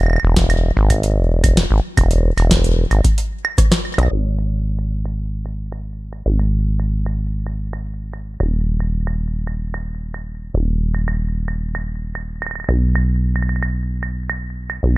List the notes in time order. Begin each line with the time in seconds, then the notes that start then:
Already playing: E1
0.03 high woodblock
0.06 high woodblock
0.10 high woodblock
0.13 high woodblock
0.16 high woodblock
0.20 E1, high woodblock
0.36 kick, snare, closed hi-hat
0.50 closed hi-hat, high woodblock
0.77 G#1
0.90 kick, closed hi-hat, high woodblock
1.03 closed hi-hat
1.17 E1
1.44 kick, closed hi-hat, high woodblock
1.57 snare, closed hi-hat
1.71 G#1
1.97 E1, kick, closed hi-hat, high woodblock
2.11 closed hi-hat
2.37 E1, closed hi-hat, high woodblock
2.51 kick, snare, closed hi-hat
2.64 closed hi-hat
2.91 G#1, closed hi-hat, high woodblock
3.04 kick, closed hi-hat
3.18 closed hi-hat
3.45 high woodblock
3.58 kick, cross-stick, closed hi-hat
3.72 cross-stick, snare, closed hi-hat
3.85 high woodblock
3.94 high woodblock
3.98 B1, cross-stick, closed hi-hat
4.03 high woodblock
4.11 G#1, high woodblock
4.39 high woodblock
4.79 high woodblock
5.05 high woodblock
5.46 high woodblock
5.72 high woodblock
6.13 high woodblock
6.26 G#1
6.39 high woodblock
6.80 high woodblock
7.06 high woodblock
7.47 high woodblock
7.73 high woodblock
8.13 high woodblock
8.40 D#1, high woodblock
8.80 high woodblock
9.07 high woodblock
9.47 high woodblock
9.74 high woodblock
10.14 high woodblock
10.54 D#1
10.95 high woodblock
11.08 high woodblock
11.48 high woodblock
11.75 high woodblock
12.15 high woodblock
12.42 high woodblock
12.46 high woodblock
12.51 high woodblock
12.55 high woodblock
12.60 high woodblock
12.64 high woodblock
12.69 B1, high woodblock
12.95 high woodblock
13.36 high woodblock
13.42 high woodblock
13.49 high woodblock
13.56 high woodblock
13.63 high woodblock
14.03 high woodblock
14.30 high woodblock
14.70 high woodblock
14.83 B1